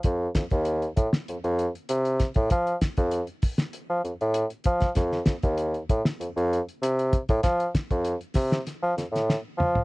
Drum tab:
HH |x-xxxxx-xxxxxxxx|xxxxxxoxx-xxxxxx|x-xxxxx-xxxxxxxx|xxxxxxoxx-xx----|
SD |--o----o------o-|--o----o-------o|ooo----o--------|o-o---ooo-ooo---|
T2 |----------------|----------------|----------------|--------------o-|
FT |----------------|----------------|----------------|---------------o|
BD |o-oo--o-------oo|o-oo--o-------oo|o-oo--o-------oo|o-oo--o---------|